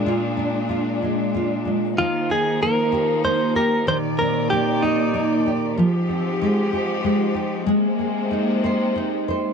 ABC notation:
X:1
M:6/8
L:1/8
Q:3/8=63
K:Eb
V:1 name="Clean electric guitar"
z6 | F A B2 c B | c B G E2 z | z6 |
z6 |]
V:2 name="Nylon-string guitar"
[B,,A,DF] D F A, F A, | E, E B, G B, G | E, C B, G B, G | F, C A, G A, G |
A, A E c E c |]
V:3 name="String section" clef=bass
[B,,A,D]6 | [F,B,E]6 | [E,,B,,d]6 | [A,,F,G]6 |
[C,A,B,]6 |]